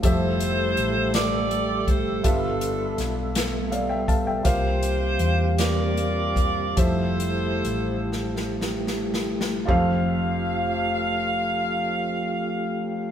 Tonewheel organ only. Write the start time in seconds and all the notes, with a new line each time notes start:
0.05 G3 A3 G4 E5
2.25 B3 A4
4.46 A#3 C4 G4
6.78 A3 E4
9.69 F3 A3 F4 G4